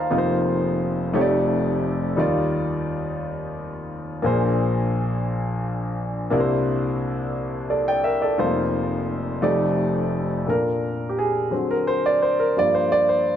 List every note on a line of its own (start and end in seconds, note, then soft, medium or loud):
0.00 0.13 D#2 medium
0.00 0.13 D#3 medium
0.00 0.13 G3 medium
0.00 0.11 D#4 medium
0.00 0.12 F4 medium
0.00 0.17 C5 medium
0.00 0.12 D5 medium
0.00 0.13 D#5 medium
0.00 0.27 F5 medium
0.00 0.13 A5 medium
0.00 0.12 A#5 medium
0.10 1.11 F1 medium
0.10 1.11 F2 medium
0.10 1.14 A#3 medium
0.10 1.12 D#4 medium
0.10 1.15 F4 medium
0.10 0.18 A#4 medium
0.18 1.18 C5 medium
1.13 2.14 F1 medium
1.13 2.14 F2 medium
1.13 2.18 A3 medium
1.13 2.16 D#4 medium
1.13 2.18 G4 medium
1.13 1.21 C#5 medium
1.21 2.18 D5 medium
2.16 4.21 D#2 medium
2.16 4.21 D#3 medium
2.16 4.20 G3 medium
2.16 4.21 D#4 medium
2.16 4.21 F4 medium
2.16 4.22 D5 medium
4.22 6.28 A#1 medium
4.22 6.28 A#2 medium
4.22 6.27 A#3 medium
4.22 6.28 D4 medium
4.22 6.28 G#4 medium
4.22 6.29 C5 medium
6.30 8.36 C2 medium
6.30 8.36 C3 medium
6.30 8.35 A#3 medium
6.30 8.35 D4 medium
6.30 8.36 E4 medium
6.30 6.40 A#4 medium
6.40 7.72 C5 medium
7.70 7.87 A4 medium
7.70 7.87 D5 medium
7.88 8.05 D5 medium
7.88 8.04 G5 medium
8.04 8.21 A#4 medium
8.04 8.21 E5 medium
8.22 8.56 A4 medium
8.22 8.55 D5 medium
8.38 9.39 F1 medium
8.38 9.39 F2 medium
8.38 8.45 A3 medium
8.38 9.41 D#4 medium
8.38 9.43 F4 medium
8.38 9.44 C5 medium
8.44 9.46 A#3 medium
9.42 10.43 F1 medium
9.42 10.43 F2 medium
9.42 10.47 A3 medium
9.42 10.47 D#4 medium
9.42 10.47 G4 medium
9.42 10.48 D5 medium
10.46 11.47 A#2 soft
10.46 11.48 D4 soft
10.46 11.47 A4 soft
10.46 11.13 A#4 medium
11.09 11.17 G4 medium
11.19 11.71 G#4 medium
11.51 12.51 D3 soft
11.51 12.52 F#3 soft
11.51 12.52 C4 medium
11.71 11.76 A#4 medium
11.87 12.03 C5 medium
12.06 12.11 D5 medium
12.22 12.38 C5 medium
12.40 12.55 A#4 medium
12.57 13.02 G2 soft
12.57 13.03 F3 soft
12.57 13.03 A#3 soft
12.57 12.75 D5 medium
12.75 12.90 C5 medium
12.92 12.97 D5 medium
13.09 13.36 C5 medium